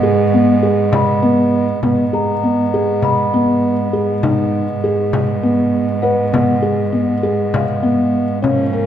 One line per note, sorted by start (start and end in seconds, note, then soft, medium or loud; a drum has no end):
0.00 1.79 G#2 medium
0.00 1.80 G#3 medium
0.00 1.80 B3 medium
0.00 0.23 G#4 medium
0.00 frame drum soft
0.34 0.53 B3 medium
0.63 1.02 G#4 medium
0.93 1.90 B5 medium
0.93 frame drum medium
1.23 1.62 B3 medium
1.83 8.44 G#2 medium
1.83 8.39 G#3 medium
1.83 8.39 B3 medium
1.83 2.03 B3 medium
1.83 frame drum soft
2.13 2.33 G#4 medium
2.13 3.10 A#5 medium
2.43 2.63 B3 medium
2.43 frame drum soft
2.74 3.13 G#4 medium
3.02 4.00 B5 medium
3.02 frame drum medium
3.34 3.73 B3 medium
3.63 frame drum soft
3.93 4.13 G#4 medium
4.23 4.63 D#4 medium
4.23 frame drum medium
4.54 frame drum soft
4.84 5.23 G#4 medium
5.13 frame drum medium
5.43 5.83 B3 medium
5.74 frame drum soft
6.02 6.23 B4 medium
6.02 6.99 F#5 medium
6.33 6.53 B3 medium
6.33 frame drum medium
6.62 6.82 G#4 medium
6.93 7.13 B3 medium
6.93 frame drum soft
7.23 7.63 G#4 medium
7.54 8.50 F5 soft
7.54 frame drum medium
7.83 8.22 B3 medium
7.83 frame drum soft
8.42 8.86 G#2 medium
8.42 8.86 F3 medium
8.42 8.86 A#3 medium
8.42 8.62 C#4 medium
8.42 8.86 C#4 medium
8.42 frame drum medium
8.73 8.86 A#4 medium